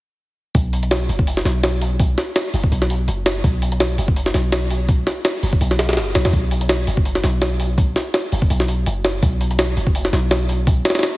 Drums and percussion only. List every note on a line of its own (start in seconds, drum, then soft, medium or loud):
0.55 kick loud
0.55 open hi-hat medium
0.73 open hi-hat medium
0.83 closed hi-hat soft
0.91 snare loud
0.91 open hi-hat medium
1.09 open hi-hat medium
1.19 kick medium
1.27 open hi-hat medium
1.37 snare soft
1.45 snare soft
1.45 open hi-hat medium
1.63 snare loud
1.63 open hi-hat medium
1.82 open hi-hat medium
2.00 kick loud
2.00 open hi-hat medium
2.18 snare soft
2.18 open hi-hat medium
2.36 snare loud
2.36 open hi-hat medium
2.54 open hi-hat medium
2.64 kick medium
2.72 open hi-hat medium
2.82 snare soft
2.90 open hi-hat medium
3.08 open hi-hat medium
3.26 snare loud
3.26 open hi-hat medium
3.44 kick loud
3.44 open hi-hat medium
3.62 open hi-hat medium
3.72 closed hi-hat soft
3.80 snare loud
3.80 open hi-hat medium
3.98 open hi-hat medium
4.08 kick medium
4.16 open hi-hat medium
4.26 snare soft
4.34 snare soft
4.34 open hi-hat medium
4.52 snare loud
4.52 open hi-hat medium
4.71 open hi-hat medium
4.89 kick loud
4.89 open hi-hat medium
5.07 snare soft
5.07 open hi-hat medium
5.25 snare loud
5.25 open hi-hat medium
5.43 open hi-hat medium
5.53 kick medium
5.61 open hi-hat medium
5.71 snare soft
5.79 snare loud
5.79 open hi-hat medium
5.89 snare medium
5.89 open hi-hat medium
5.93 snare medium
5.93 open hi-hat medium
5.97 snare loud
5.97 open hi-hat medium
6.15 snare loud
6.15 open hi-hat medium
6.25 snare loud
6.25 open hi-hat medium
6.33 kick loud
6.33 open hi-hat medium
6.51 open hi-hat medium
6.61 closed hi-hat soft
6.69 snare loud
6.69 open hi-hat medium
6.87 open hi-hat medium
6.97 kick medium
7.05 open hi-hat medium
7.15 snare soft
7.24 snare soft
7.24 open hi-hat medium
7.42 snare loud
7.42 open hi-hat medium
7.60 open hi-hat medium
7.78 kick loud
7.78 open hi-hat medium
7.96 snare medium
7.96 open hi-hat medium
8.14 snare loud
8.14 open hi-hat medium
8.32 open hi-hat medium
8.42 kick medium
8.50 open hi-hat medium
8.60 snare soft
8.68 open hi-hat medium
8.86 open hi-hat medium
9.05 snare loud
9.05 open hi-hat medium
9.23 kick loud
9.23 open hi-hat medium
9.41 open hi-hat medium
9.51 closed hi-hat soft
9.59 snare loud
9.59 open hi-hat medium
9.77 open hi-hat medium
9.87 kick medium
9.95 open hi-hat medium
10.05 snare soft
10.13 snare soft
10.13 open hi-hat medium
10.31 snare loud
10.31 open hi-hat medium
10.49 open hi-hat medium
10.67 kick loud
10.67 open hi-hat medium
10.85 snare medium
10.85 open hi-hat medium
10.90 snare medium
10.90 open hi-hat medium
10.95 snare medium
10.95 open hi-hat medium
10.99 snare medium
10.99 open hi-hat medium
11.03 snare loud
11.03 open hi-hat medium